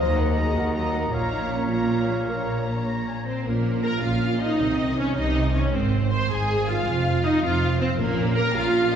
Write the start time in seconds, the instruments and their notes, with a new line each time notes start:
0.00 double bass section D#2, cello section D#2, viola section F#3, french horn section C5, clarinet D#5, oboe D#5, violin section D#5 A#5, flute A#5
0.17 viola section A#3, violin section A#4 F#5, french horn section A#4
0.37 viola section F#3, french horn section G#4, violin section D#5 A#5
0.55 double bass section D#2, cello section D#2, viola section A#3, french horn section F#4, violin section A#4 F#5
0.74 viola section F#3, violin section D#5 A#5
0.93 viola section A#3, violin section A#4 F#5
1.12 double bass section A#1, cello section A#2, viola section A#3, french horn section F4, clarinet C#5, violin section C#5 A#5, oboe F5
1.31 french horn section D#4
1.50 french horn section C#4
1.69 viola section A#3, french horn section F4, violin section C#5 A#5
2.28 viola section A#3, french horn section A#4, violin section C#5 A#5, flute A#5
2.88 oboe A#5
3.08 oboe G#5
3.24 viola section C4, violin section C5, oboe A#5
3.46 double bass section A#1, cello section A#2, trombone section F3 C#4, viola section A#3, violin section A#4
3.82 viola section A#4, violin section A#5
4.00 double bass section A#1, cello section A#2, trombone section F3 C#4, viola section F4, violin section F5
4.38 viola section D#4, violin section D#5
4.57 double bass section C2, cello section C3, trombone section D#3 C4
4.98 viola section C#4, violin section C#5
5.17 double bass section C2, cello section C3, trombone section D#3 C4, viola section D#4, violin section D#5
5.56 viola section C#4, violin section C#5
5.74 double bass section G#1, cello section G#2, trombone section D#3 C4, viola section C4, violin section C5
6.10 viola section C5, violin section C6
6.30 double bass section G#1, cello section G#2, trombone section D#3 C4, viola section G#4, violin section G#5
6.67 viola section F4, violin section F5
6.85 double bass section F1, cello section F2, trombone section F3 C4
7.24 viola section D#4, violin section D#5
7.42 double bass section F1, cello section F2, trombone section F3 C4, viola section F4, violin section F5
7.79 viola section C4, violin section C5
7.98 double bass section A#1, timpani A#2, cello section A#2, trombone section F3 C#4, viola section A#3, violin section A#4
8.35 viola section A#4, violin section A#5
8.54 double bass section A#1, cello section A#2, trombone section F3 C#4, viola section F4, violin section F5
8.91 violin section D#5